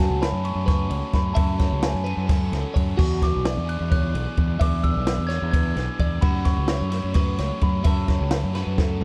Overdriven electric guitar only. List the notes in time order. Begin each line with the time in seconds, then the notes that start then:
Already playing: F#3 A3 C#4 F#4
0.42 F#3 A3 C#4 F#4
1.34 F#3 A3 C#4 F#4
2.05 F#3 A3 C#4 F#4
2.97 E3 B3 D4 G#4
3.65 E3 B3 D4 G#4
4.59 E3 B3 D4 G#4
5.29 E3 B3 D4 G#4
6.22 F#3 A3 C#4 F#4
6.90 F#3 A3 C#4 F#4
7.83 F#3 A3 C#4 F#4
8.53 F#3 A3 C#4 F#4